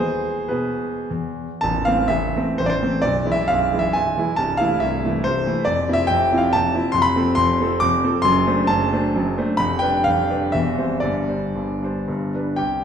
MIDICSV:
0, 0, Header, 1, 2, 480
1, 0, Start_track
1, 0, Tempo, 598802
1, 872, Tempo, 526778
1, 1351, Time_signature, 3, 2, 24, 8
1, 1352, Tempo, 483092
1, 2312, Tempo, 457317
1, 3752, Tempo, 427960
1, 7592, Tempo, 444115
1, 10472, Tempo, 490998
1, 11432, Tempo, 535236
1, 12392, Tempo, 498753
1, 13112, End_track
2, 0, Start_track
2, 0, Title_t, "Grand piano"
2, 0, Program_c, 0, 0
2, 0, Note_on_c, 0, 52, 53
2, 0, Note_on_c, 0, 56, 45
2, 0, Note_on_c, 0, 59, 43
2, 0, Note_on_c, 0, 68, 68
2, 0, Note_on_c, 0, 72, 91
2, 100, Control_c, 0, 64, 127
2, 256, Note_off_c, 0, 52, 0
2, 307, Note_off_c, 0, 56, 0
2, 307, Note_off_c, 0, 59, 0
2, 365, Note_off_c, 0, 68, 0
2, 388, Note_on_c, 0, 71, 64
2, 392, Note_off_c, 0, 72, 0
2, 395, Note_on_c, 0, 68, 47
2, 404, Note_on_c, 0, 47, 50
2, 734, Note_off_c, 0, 47, 0
2, 839, Note_off_c, 0, 68, 0
2, 868, Note_off_c, 0, 71, 0
2, 884, Control_c, 0, 64, 0
2, 888, Note_on_c, 0, 40, 49
2, 1218, Note_off_c, 0, 40, 0
2, 1347, Note_on_c, 0, 81, 104
2, 1363, Note_on_c, 0, 21, 60
2, 1373, Note_on_c, 0, 33, 63
2, 1552, Control_c, 0, 64, 127
2, 1581, Note_off_c, 0, 81, 0
2, 1582, Note_off_c, 0, 21, 0
2, 1587, Note_off_c, 0, 33, 0
2, 1587, Note_on_c, 0, 77, 97
2, 1601, Note_on_c, 0, 52, 50
2, 1609, Note_on_c, 0, 57, 49
2, 1615, Note_on_c, 0, 60, 55
2, 1812, Note_off_c, 0, 52, 0
2, 1813, Note_on_c, 0, 76, 88
2, 1816, Note_off_c, 0, 57, 0
2, 1819, Note_off_c, 0, 60, 0
2, 1828, Note_off_c, 0, 77, 0
2, 1831, Note_on_c, 0, 33, 61
2, 1834, Note_on_c, 0, 21, 60
2, 1838, Control_c, 0, 64, 0
2, 2069, Note_off_c, 0, 33, 0
2, 2070, Note_off_c, 0, 21, 0
2, 2093, Note_on_c, 0, 52, 49
2, 2098, Note_on_c, 0, 57, 46
2, 2108, Note_on_c, 0, 60, 53
2, 2297, Note_off_c, 0, 52, 0
2, 2300, Note_off_c, 0, 57, 0
2, 2304, Note_off_c, 0, 76, 0
2, 2306, Note_off_c, 0, 60, 0
2, 2313, Note_on_c, 0, 72, 90
2, 2332, Note_on_c, 0, 33, 54
2, 2336, Note_on_c, 0, 21, 58
2, 2382, Note_off_c, 0, 72, 0
2, 2396, Note_on_c, 0, 74, 81
2, 2432, Note_on_c, 0, 72, 93
2, 2458, Note_off_c, 0, 74, 0
2, 2555, Note_off_c, 0, 33, 0
2, 2557, Note_off_c, 0, 21, 0
2, 2568, Note_on_c, 0, 57, 47
2, 2571, Note_on_c, 0, 52, 48
2, 2573, Note_on_c, 0, 60, 56
2, 2769, Note_on_c, 0, 74, 104
2, 2772, Note_off_c, 0, 57, 0
2, 2774, Note_off_c, 0, 52, 0
2, 2776, Note_off_c, 0, 60, 0
2, 2778, Note_off_c, 0, 72, 0
2, 2781, Note_on_c, 0, 23, 59
2, 2785, Note_on_c, 0, 35, 65
2, 2950, Control_c, 0, 64, 127
2, 3015, Note_off_c, 0, 23, 0
2, 3017, Note_off_c, 0, 35, 0
2, 3019, Note_on_c, 0, 52, 47
2, 3019, Note_on_c, 0, 56, 48
2, 3029, Note_on_c, 0, 64, 54
2, 3084, Note_on_c, 0, 76, 94
2, 3097, Note_off_c, 0, 74, 0
2, 3244, Note_off_c, 0, 52, 0
2, 3244, Note_off_c, 0, 56, 0
2, 3250, Note_off_c, 0, 64, 0
2, 3252, Note_on_c, 0, 77, 98
2, 3261, Note_off_c, 0, 76, 0
2, 3273, Note_on_c, 0, 35, 56
2, 3282, Note_on_c, 0, 23, 58
2, 3512, Note_off_c, 0, 35, 0
2, 3517, Note_off_c, 0, 23, 0
2, 3522, Note_on_c, 0, 56, 49
2, 3523, Note_on_c, 0, 52, 47
2, 3527, Note_on_c, 0, 64, 49
2, 3581, Note_on_c, 0, 76, 87
2, 3588, Note_off_c, 0, 77, 0
2, 3730, Note_off_c, 0, 52, 0
2, 3730, Note_off_c, 0, 56, 0
2, 3731, Note_on_c, 0, 80, 92
2, 3733, Note_off_c, 0, 64, 0
2, 3743, Note_off_c, 0, 76, 0
2, 3750, Note_on_c, 0, 35, 53
2, 3751, Note_on_c, 0, 23, 56
2, 3764, Control_c, 0, 64, 0
2, 3980, Note_off_c, 0, 23, 0
2, 3980, Note_off_c, 0, 35, 0
2, 4001, Note_on_c, 0, 52, 50
2, 4007, Note_on_c, 0, 56, 52
2, 4014, Note_on_c, 0, 64, 51
2, 4204, Note_off_c, 0, 52, 0
2, 4207, Note_off_c, 0, 56, 0
2, 4208, Note_off_c, 0, 80, 0
2, 4211, Note_off_c, 0, 64, 0
2, 4214, Note_on_c, 0, 81, 98
2, 4235, Note_on_c, 0, 36, 67
2, 4236, Note_on_c, 0, 24, 59
2, 4445, Control_c, 0, 64, 127
2, 4449, Note_on_c, 0, 77, 98
2, 4456, Note_off_c, 0, 81, 0
2, 4459, Note_off_c, 0, 36, 0
2, 4460, Note_off_c, 0, 24, 0
2, 4476, Note_on_c, 0, 52, 49
2, 4480, Note_on_c, 0, 57, 47
2, 4489, Note_on_c, 0, 64, 55
2, 4693, Note_off_c, 0, 52, 0
2, 4695, Note_off_c, 0, 57, 0
2, 4700, Note_off_c, 0, 64, 0
2, 4704, Note_off_c, 0, 77, 0
2, 4704, Note_on_c, 0, 76, 82
2, 4726, Note_on_c, 0, 24, 55
2, 4733, Note_on_c, 0, 36, 59
2, 4960, Note_off_c, 0, 24, 0
2, 4963, Note_off_c, 0, 36, 0
2, 4979, Note_on_c, 0, 57, 50
2, 4980, Note_on_c, 0, 52, 49
2, 4992, Note_on_c, 0, 64, 54
2, 5186, Note_off_c, 0, 52, 0
2, 5186, Note_off_c, 0, 57, 0
2, 5193, Note_off_c, 0, 64, 0
2, 5195, Note_on_c, 0, 72, 96
2, 5196, Note_off_c, 0, 76, 0
2, 5205, Control_c, 0, 64, 0
2, 5225, Note_on_c, 0, 36, 55
2, 5226, Note_on_c, 0, 24, 55
2, 5440, Note_off_c, 0, 36, 0
2, 5441, Note_off_c, 0, 24, 0
2, 5447, Note_on_c, 0, 52, 51
2, 5451, Note_on_c, 0, 57, 49
2, 5465, Note_on_c, 0, 64, 51
2, 5650, Note_off_c, 0, 52, 0
2, 5652, Note_off_c, 0, 57, 0
2, 5652, Note_on_c, 0, 74, 99
2, 5660, Note_off_c, 0, 64, 0
2, 5664, Note_off_c, 0, 72, 0
2, 5670, Note_on_c, 0, 29, 60
2, 5680, Note_on_c, 0, 41, 64
2, 5857, Control_c, 0, 64, 127
2, 5897, Note_off_c, 0, 29, 0
2, 5903, Note_off_c, 0, 41, 0
2, 5918, Note_on_c, 0, 53, 50
2, 5924, Note_on_c, 0, 64, 57
2, 5929, Note_on_c, 0, 60, 52
2, 5974, Note_on_c, 0, 76, 103
2, 5977, Note_off_c, 0, 74, 0
2, 6128, Note_on_c, 0, 79, 109
2, 6135, Note_off_c, 0, 53, 0
2, 6138, Note_off_c, 0, 64, 0
2, 6141, Note_off_c, 0, 60, 0
2, 6147, Note_off_c, 0, 76, 0
2, 6164, Note_on_c, 0, 41, 56
2, 6165, Note_on_c, 0, 29, 60
2, 6405, Note_off_c, 0, 41, 0
2, 6406, Note_off_c, 0, 29, 0
2, 6410, Note_on_c, 0, 53, 51
2, 6415, Note_on_c, 0, 60, 51
2, 6424, Note_on_c, 0, 64, 55
2, 6470, Note_on_c, 0, 77, 84
2, 6478, Note_off_c, 0, 79, 0
2, 6631, Note_off_c, 0, 53, 0
2, 6634, Note_off_c, 0, 60, 0
2, 6639, Note_off_c, 0, 64, 0
2, 6639, Note_on_c, 0, 81, 113
2, 6644, Note_off_c, 0, 77, 0
2, 6661, Note_on_c, 0, 29, 61
2, 6663, Note_on_c, 0, 41, 60
2, 6668, Control_c, 0, 64, 0
2, 6882, Note_on_c, 0, 53, 51
2, 6887, Note_off_c, 0, 29, 0
2, 6888, Note_off_c, 0, 41, 0
2, 6892, Note_on_c, 0, 64, 59
2, 6893, Note_on_c, 0, 60, 50
2, 7079, Note_on_c, 0, 84, 111
2, 7091, Note_off_c, 0, 53, 0
2, 7097, Note_off_c, 0, 60, 0
2, 7097, Note_off_c, 0, 64, 0
2, 7103, Note_on_c, 0, 41, 71
2, 7109, Note_on_c, 0, 29, 65
2, 7111, Note_off_c, 0, 81, 0
2, 7191, Note_on_c, 0, 83, 121
2, 7212, Note_off_c, 0, 84, 0
2, 7297, Control_c, 0, 64, 127
2, 7334, Note_off_c, 0, 41, 0
2, 7337, Note_off_c, 0, 29, 0
2, 7343, Note_on_c, 0, 53, 54
2, 7351, Note_on_c, 0, 60, 56
2, 7355, Note_on_c, 0, 69, 56
2, 7563, Note_on_c, 0, 84, 123
2, 7564, Note_off_c, 0, 53, 0
2, 7568, Note_off_c, 0, 60, 0
2, 7570, Note_off_c, 0, 69, 0
2, 7570, Note_off_c, 0, 83, 0
2, 7579, Note_on_c, 0, 29, 66
2, 7588, Note_on_c, 0, 41, 65
2, 7819, Note_off_c, 0, 29, 0
2, 7823, Note_off_c, 0, 41, 0
2, 7838, Note_on_c, 0, 53, 50
2, 7841, Note_on_c, 0, 60, 55
2, 7848, Note_on_c, 0, 69, 62
2, 8050, Note_on_c, 0, 86, 117
2, 8053, Note_off_c, 0, 53, 0
2, 8055, Note_off_c, 0, 60, 0
2, 8059, Note_off_c, 0, 69, 0
2, 8060, Note_off_c, 0, 84, 0
2, 8066, Note_on_c, 0, 29, 67
2, 8070, Note_on_c, 0, 41, 63
2, 8089, Control_c, 0, 64, 0
2, 8299, Note_off_c, 0, 29, 0
2, 8301, Note_off_c, 0, 41, 0
2, 8307, Note_on_c, 0, 53, 56
2, 8309, Note_on_c, 0, 60, 53
2, 8317, Note_on_c, 0, 69, 59
2, 8502, Note_on_c, 0, 84, 127
2, 8512, Note_off_c, 0, 53, 0
2, 8513, Note_off_c, 0, 60, 0
2, 8518, Note_off_c, 0, 69, 0
2, 8524, Note_off_c, 0, 86, 0
2, 8531, Note_on_c, 0, 30, 71
2, 8535, Note_on_c, 0, 42, 77
2, 8724, Control_c, 0, 64, 127
2, 8755, Note_off_c, 0, 30, 0
2, 8757, Note_off_c, 0, 42, 0
2, 8770, Note_on_c, 0, 57, 59
2, 8774, Note_on_c, 0, 72, 59
2, 8780, Note_on_c, 0, 62, 54
2, 8990, Note_off_c, 0, 57, 0
2, 8992, Note_off_c, 0, 72, 0
2, 8994, Note_off_c, 0, 84, 0
2, 8994, Note_on_c, 0, 81, 111
2, 8995, Note_off_c, 0, 62, 0
2, 9016, Note_on_c, 0, 42, 68
2, 9022, Note_on_c, 0, 30, 68
2, 9260, Note_off_c, 0, 42, 0
2, 9263, Note_off_c, 0, 30, 0
2, 9263, Note_on_c, 0, 57, 53
2, 9270, Note_on_c, 0, 62, 55
2, 9276, Note_on_c, 0, 72, 55
2, 9485, Note_off_c, 0, 57, 0
2, 9489, Note_off_c, 0, 62, 0
2, 9492, Note_off_c, 0, 72, 0
2, 9516, Note_on_c, 0, 30, 66
2, 9517, Note_on_c, 0, 42, 61
2, 9518, Control_c, 0, 64, 0
2, 9739, Note_off_c, 0, 81, 0
2, 9744, Note_off_c, 0, 30, 0
2, 9745, Note_off_c, 0, 42, 0
2, 9756, Note_on_c, 0, 62, 55
2, 9759, Note_on_c, 0, 57, 58
2, 9759, Note_on_c, 0, 72, 59
2, 9961, Note_off_c, 0, 62, 0
2, 9963, Note_off_c, 0, 57, 0
2, 9963, Note_off_c, 0, 72, 0
2, 9965, Note_on_c, 0, 83, 119
2, 9988, Note_on_c, 0, 29, 66
2, 9989, Note_on_c, 0, 41, 73
2, 10169, Control_c, 0, 64, 127
2, 10200, Note_on_c, 0, 79, 111
2, 10209, Note_off_c, 0, 83, 0
2, 10213, Note_off_c, 0, 29, 0
2, 10214, Note_off_c, 0, 41, 0
2, 10227, Note_on_c, 0, 55, 52
2, 10230, Note_on_c, 0, 71, 60
2, 10237, Note_on_c, 0, 62, 50
2, 10451, Note_off_c, 0, 55, 0
2, 10453, Note_off_c, 0, 71, 0
2, 10457, Note_off_c, 0, 62, 0
2, 10463, Note_off_c, 0, 79, 0
2, 10471, Note_on_c, 0, 77, 97
2, 10492, Note_on_c, 0, 29, 61
2, 10492, Note_on_c, 0, 41, 58
2, 10714, Note_off_c, 0, 29, 0
2, 10714, Note_off_c, 0, 41, 0
2, 10725, Note_on_c, 0, 62, 47
2, 10728, Note_on_c, 0, 55, 48
2, 10731, Note_on_c, 0, 71, 53
2, 10932, Note_off_c, 0, 62, 0
2, 10934, Note_off_c, 0, 55, 0
2, 10936, Note_off_c, 0, 71, 0
2, 10942, Note_on_c, 0, 76, 89
2, 10948, Note_off_c, 0, 77, 0
2, 10958, Control_c, 0, 64, 0
2, 10961, Note_on_c, 0, 28, 58
2, 10961, Note_on_c, 0, 40, 63
2, 11114, Control_c, 0, 64, 127
2, 11187, Note_off_c, 0, 28, 0
2, 11188, Note_off_c, 0, 40, 0
2, 11192, Note_on_c, 0, 55, 45
2, 11196, Note_on_c, 0, 60, 41
2, 11201, Note_on_c, 0, 72, 50
2, 11409, Note_off_c, 0, 55, 0
2, 11411, Note_off_c, 0, 60, 0
2, 11411, Note_on_c, 0, 74, 81
2, 11414, Note_off_c, 0, 72, 0
2, 11428, Note_off_c, 0, 76, 0
2, 11431, Note_on_c, 0, 43, 55
2, 11436, Note_on_c, 0, 31, 50
2, 11443, Control_c, 0, 64, 0
2, 11614, Control_c, 0, 64, 127
2, 11654, Note_off_c, 0, 43, 0
2, 11656, Note_off_c, 0, 31, 0
2, 11668, Note_on_c, 0, 62, 40
2, 11671, Note_on_c, 0, 55, 42
2, 11674, Note_on_c, 0, 72, 42
2, 11885, Note_off_c, 0, 62, 0
2, 11886, Note_off_c, 0, 55, 0
2, 11888, Note_off_c, 0, 72, 0
2, 11909, Note_on_c, 0, 31, 46
2, 11909, Note_on_c, 0, 43, 47
2, 12148, Note_off_c, 0, 31, 0
2, 12148, Note_off_c, 0, 43, 0
2, 12154, Note_on_c, 0, 55, 38
2, 12156, Note_on_c, 0, 62, 36
2, 12168, Note_on_c, 0, 72, 43
2, 12367, Note_off_c, 0, 55, 0
2, 12368, Note_off_c, 0, 62, 0
2, 12375, Note_off_c, 0, 72, 0
2, 12379, Note_on_c, 0, 31, 45
2, 12379, Note_on_c, 0, 43, 47
2, 12382, Note_off_c, 0, 74, 0
2, 12401, Control_c, 0, 64, 0
2, 12599, Control_c, 0, 64, 127
2, 12622, Note_off_c, 0, 31, 0
2, 12622, Note_off_c, 0, 43, 0
2, 12634, Note_on_c, 0, 55, 35
2, 12634, Note_on_c, 0, 62, 36
2, 12644, Note_on_c, 0, 71, 41
2, 12845, Note_on_c, 0, 79, 81
2, 12848, Note_off_c, 0, 55, 0
2, 12848, Note_off_c, 0, 62, 0
2, 12853, Note_off_c, 0, 71, 0
2, 12860, Note_on_c, 0, 67, 58
2, 12864, Note_on_c, 0, 36, 50
2, 12881, Control_c, 0, 64, 0
2, 13057, Control_c, 0, 64, 127
2, 13112, Note_off_c, 0, 36, 0
2, 13112, Note_off_c, 0, 67, 0
2, 13112, Note_off_c, 0, 79, 0
2, 13112, End_track
0, 0, End_of_file